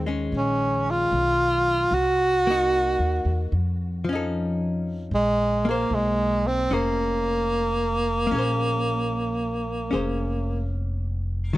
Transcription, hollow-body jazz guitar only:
Already playing: D#3
0.06 G#3 C#4
2.47 A#3 D#4
2.52 F#4
4.05 F3
4.09 C#4 D#4
4.15 A4
5.65 A#3 G#4
5.71 C5
6.71 C#4 G#4 C5
8.27 A#3
8.31 C#4 G#4
8.38 C5
9.91 C#4 G#4 C5
11.53 D#3

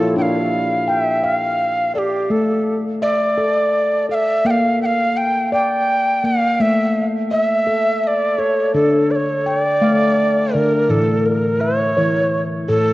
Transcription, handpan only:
Already playing: F3 A#3 F4
0.00 E4
0.16 D4
0.88 G5
1.23 F5
1.95 D5
2.30 A3
3.02 E5
3.38 A4
4.09 A4
4.45 A#3
5.52 D5
6.24 A#3
6.60 A3
7.31 E5
7.67 A4
8.38 A4
8.74 D3 D4
9.46 G5
9.82 A3 F5
10.54 D3 D5
10.89 A2 E3
11.61 E5
11.97 E3 C#5
12.68 A2 A4

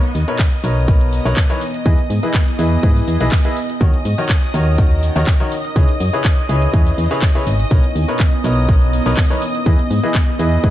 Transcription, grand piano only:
0.28 B2 D#4 A#4 B4 C#5
0.64 B2 D#4 A#4 B4 C#5
0.88 B2 D#4 A#4 B4 C#5
1.25 B2 D#4 A#4 B4 C#5
1.50 E3 D#4 A#4 B4 C#5
1.86 E3 E4 G#4 B4 D#5
2.23 E3 E4 G#4 B4 D#5
2.59 E3 E4 G#4 B4 D#5
2.83 E3 E4 G#4 B4 D#5
3.21 E3 E4 G#4 B4 D#5
3.45 E4 G#4 B4 D#5
3.81 D#3 D#4 F#4 A#4 C#5
4.18 D#3 D#4 F#4 A#4 C#5
4.54 D#3 D#4 F#4 A#4 C#5
4.78 D#3 D#4 F#4 A#4 C#5
5.16 D#3 D#4 F#4 A#4 C#5
5.40 D#3 D#4 F#4 A#4 C#5
5.76 C#3 E4 G#4 B4 C#5
6.13 C#3 E4 G#4 B4 C#5
6.49 C#3 E4 G#4 B4 C#5
6.73 C#3 E4 G#4 B4 C#5
7.11 C#3 E4 G#4 B4 C#5
7.35 C#3 E4 G#4 B4 C#5
7.71 B2 D#4 A#4 B4 C#5
8.08 B2 D#4 A#4 B4 C#5
8.44 B2 D#4 A#4 B4 C#5
8.69 D#4 A#4 B4 C#5
9.06 B2 D#4 A#4 B4 C#5
9.30 E3 D#4 A#4 B4 C#5
9.66 E3 E4 G#4 B4 D#5
10.03 E3 E4 G#4 B4 D#5
10.39 E3 E4 G#4 B4 D#5
10.64 E3 E4 G#4 B4 D#5

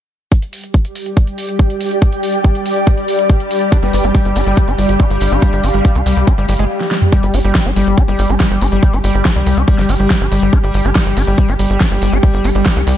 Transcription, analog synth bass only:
3.83 G1
3.93 G1
4.04 G1
4.25 G1
4.36 G1
4.47 G1
4.68 G1
4.78 G1
4.89 G1
5.10 G1
5.21 G1
5.32 G1
5.53 G1
5.64 G1
5.74 G1
5.95 C2
6.06 C2
6.17 C2
6.38 G1
6.49 G1
6.59 G1
7.23 G1
7.34 G1
7.44 G1
7.66 G1
7.76 G1
7.87 G1
8.08 G1
8.19 G1
8.30 G1
8.51 G1
8.61 G1
8.72 G1
8.93 G1
9.04 G1
9.15 G1
9.36 C2
9.46 C2
9.57 C2
9.78 G1
9.89 G1
10.00 G1
10.21 G1
10.32 G1
10.42 G1
10.64 G1
10.74 G1
10.85 G1
11.06 G1
11.17 G1
11.27 G1
11.49 G1
11.59 G1
11.70 G1
11.91 G1
12.02 G1
12.12 G1
12.34 G1
12.44 G1
12.55 G1
12.76 C2
12.87 C2

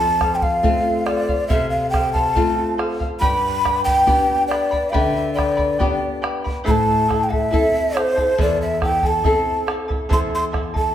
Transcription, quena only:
Already playing: A5
0.35 G5
0.43 F5
1.06 D5
1.48 E5
1.70 F5
1.90 G5
2.13 A5
3.20 B5
3.84 G5
4.48 D5
4.90 F5
4.94 E5
5.34 D5
6.67 A5 B5
7.23 G5
7.31 E5
7.97 C5
8.41 D5
8.62 E5
8.84 G5
9.06 A5
10.13 C6
10.35 C6
10.78 A5

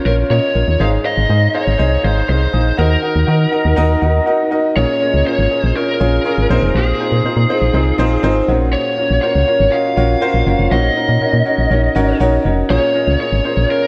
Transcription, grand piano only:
Already playing: A#2 C#4 F4 A#4 C#5
0.05 C#4 F4 A#4 C#5
0.30 C#4 F4 A#4 D#5
0.55 C#4 F4 A#4 C#5
0.80 G#2 D#4 G#4 C5 D#5
1.04 D#4 G#4 C5 F5
1.29 D#4 G#4 C5 D#5
1.54 D#4 G#4 C5 F5
1.78 D#4 G#4 C5 D#5
2.03 D#4 G#4 C5 F5
2.28 D#4 G#4 C5 D#5
2.53 D#4 G#4 C5 D#5
2.77 D#3 D#4 F#4 A#4 D#5
3.02 D#4 F#4 A#4 D#5
3.27 D#4 F#4 A#4 D#5
3.51 D#4 F#4 A#4 D#5
3.76 D#4 F#4 A#4 D#5
4.01 D#4 F#4 A#4 D#5
4.26 D#4 F#4 A#4 D#5
4.51 D#4 F#4 A#4 D#5
4.75 A#2 C#4 F4 G#4 A#4 C#5
5.01 C#4 F4 G#4 A#4 D#5
5.25 C#4 F4 G#4 A#4 C#5
5.50 C#4 F4 G#4 A#4 C#5
5.75 C#4 F4 G#4 A#4 C#5
6.00 C#4 F4 G#4 A#4 C#5
6.24 C#4 F4 G#4 A#4 C#5
6.50 A#2 C4 D#4 F4 G#4 C5
6.99 C4 D#4 F4 G#4 C5
7.24 C4 D#4 F4 G#4 C5
7.49 C4 D#4 F4 G#4 C5
7.74 C4 D#4 F4 G#4 C5
7.98 C4 D#4 F4 G#4 C5
8.23 C4 D#4 F4 G#4 C5
8.48 A#2 C#4 F4 F#4 A#4 C#5
8.97 C#4 F4 F#4 A#4 C#5
9.22 C#4 F4 F#4 A#4 C5
9.47 C#4 F4 F#4 A#4 C#5
9.72 C#4 F4 F#4 A#4 D#5
9.97 C#4 F4 F#4 A#4 C#5
10.21 C#4 F4 F#4 A#4 C5
10.46 C#4 F4 F#4 A#4 C#5
10.71 A#2 C#4 D#4 F#4 A#4 C#5
10.96 C#4 D#4 F#4 A#4 C#5
11.21 C#4 D#4 F#4 A#4 C#5
11.45 C#4 D#4 F#4 A#4 C#5
11.70 C#4 D#4 F#4 A#4 C#5
11.95 C#4 D#4 F#4 A#4 C#5
12.20 C#4 D#4 F#4 A#4 C#5
12.45 C#4 D#4 F#4 A#4 C#5
12.69 A#2 C#4 F4 G#4 A#4 C#5
12.94 C#4 F4 G#4 A#4 D#5
13.19 C#4 F4 G#4 A#4 C#5
13.44 C#4 F4 G#4 A#4 C5
13.69 C#4 F4 G#4 A#4 C#5

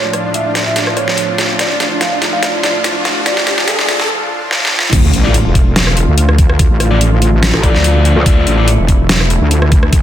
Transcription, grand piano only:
0.04 D4
0.13 D4
0.25 D4
0.34 E5
0.45 D4
0.55 D4
0.66 E5
0.76 D4
0.87 D4
0.97 C#5
1.59 D5
1.70 D4
1.80 D4
1.91 D4
2.01 F5
2.12 D4
2.22 D4
2.33 F5
2.43 D4
2.54 D4
2.63 D5
3.26 D5
3.37 D4
3.47 D4
3.58 D4
3.68 A4
3.79 D4
3.89 D4
4.00 A4

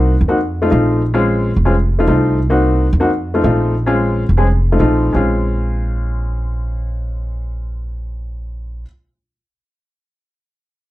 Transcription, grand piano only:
Already playing: A#3 C4 D#4 F#4
0.28 A#3 C4 D#4 F#4
0.62 A3 C4 D#4 F4
0.70 A3 C4 D#4 F4
1.14 G#3 C4 C#4 F4
1.65 G#3 C4 C#4 F4
1.99 A3 C4 D#4 F4
2.08 A3 C4 D#4 F4
2.50 A#3 C4 D#4 F#4
3.00 A#3 C4 D#4 F#4
3.34 A3 C4 D#4 F4
3.44 A3 C4 D#4 F4
3.86 G#3 C4 C#4 F4
4.37 G#3 C4 C#4 G#4
4.72 A3 C4 D#4 F4
4.79 A3 C4 D#4 F4
5.13 G#3 C4 C#4 F4

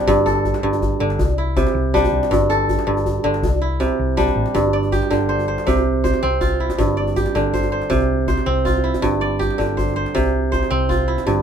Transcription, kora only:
Already playing: C3 G3 D4 E4
0.08 G2
0.26 A4
0.63 G2
1.00 D3
1.38 E4
1.57 C3
1.94 G3 D4
2.31 G2
2.50 A4
2.87 G2
3.24 D3
3.62 E4
3.80 C3
4.17 G3 D4
4.55 G2
4.73 D5
4.92 G4
5.11 D3
5.29 C5
5.48 C5
5.67 C3
6.04 C5
6.23 C4
6.41 F4
6.60 E4
6.78 G2
6.97 D5
7.16 G4
7.35 D3
7.54 C5
7.72 C5
7.90 C3
8.28 C5
8.46 C4
8.65 F4
8.84 E4
9.02 G2
9.21 D5
9.39 G4
9.58 D3
9.77 C5
9.96 C5
10.15 C3
10.52 C5
10.71 C4
10.89 F4
11.08 E4
11.27 G2

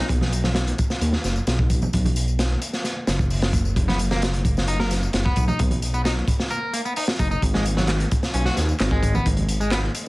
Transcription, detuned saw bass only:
0.09 B1
1.01 D#2
1.24 F#1
1.47 B1
1.94 B1
3.07 F#1
5.14 F#1
5.37 B1
5.60 B1
7.19 F#1
7.42 G#1
8.34 B1
8.57 D#2
8.80 G#1
9.26 G#1

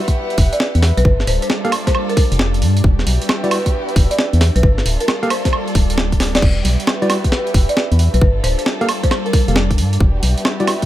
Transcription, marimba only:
0.53 D5
0.60 D5
0.97 B4
1.05 B4
1.28 C5
1.42 C5
1.87 C5
1.95 C5
2.09 A#4
2.17 A#4
4.11 D5
4.56 B4
4.63 B4
5.01 A#4
5.30 C5
5.45 C5
6.35 D5
7.69 D5
8.14 B4
8.21 B4
8.44 C5
8.59 C5
9.04 C5
9.11 C5
9.26 A#4
9.33 A#4

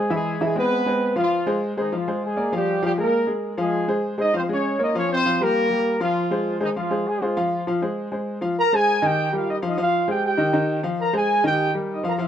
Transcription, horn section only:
Already playing: G#3 G#4
0.14 G#3 G#4
0.43 G#3 G#4
0.58 B3 B4
1.19 F3 F4
1.80 D#3 D#4
1.95 F3 F4
2.25 G#3 G#4
2.55 G3 G4
2.85 G3 G4
3.00 A#3 A#4
3.61 G#3 G#4
4.20 D#4 D#5
4.36 C4 C5
4.52 C#4 C#5
4.82 D#4 D#5
4.97 C#4 C#5
5.12 C4 C5
5.42 A#3 A#4
6.02 F3 F4
6.62 D#3 D#4
6.78 F3 F4
7.07 G#3 G#4
7.22 F3 F4
8.59 A#4 A#5
8.74 G#4 G#5
9.05 G4 G5
9.36 F4 F5
9.50 D#4 D#5
9.66 D#4 D#5
9.82 F4 F5
10.10 G4 G5
10.26 G4 G5
11.01 A#4 A#5
11.16 G#4 G#5
11.44 G4 G5
11.92 D#4 D#5
12.07 A#4 A#5
12.21 F4 F5

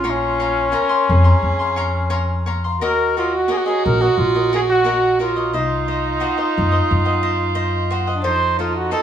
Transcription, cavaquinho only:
0.04 C#5 F5 A#5 C6
0.40 C#5 F5 A#5 C6
0.72 C#5 F5 A#5 C6
0.89 F5 A#5 C6
1.24 F5 A#5 C6
1.59 F5 A#5 C6
1.76 C#5 F5 A#5 C6
2.10 C#5 F5 A#5 C6
2.46 C#5 F5 A#5 C6
2.64 F5 A#5 C6
2.81 F#4 A#4 C#5 D#5
3.17 F#4 A#4 C#5 D#5
3.48 F#4 A#4 C#5 D#5
3.66 A#4 C#5 D#5
4.01 A#4 C#5 D#5
4.35 A#4 C#5 D#5
4.53 F#4 A#4 C#5 D#5
4.84 F#4 A#4 C#5 D#5
5.19 F#4 A#4 C#5 D#5
5.36 A#4 C#5 D#5
5.53 C5 D#5
5.88 C5 D#5
6.20 F#4 C5 D#5 F#5
6.38 C5 D#5
6.72 C5 D#5
7.05 C5 D#5 F#5
7.23 C5 D#5
7.55 C5 D#5
7.90 F#4 C5 D#5 F#5
8.07 C5 D#5 F#5
8.24 F4 A4 C5 D#5
8.59 F4 A4 C5 D#5
8.91 F4 A4 C5 D#5

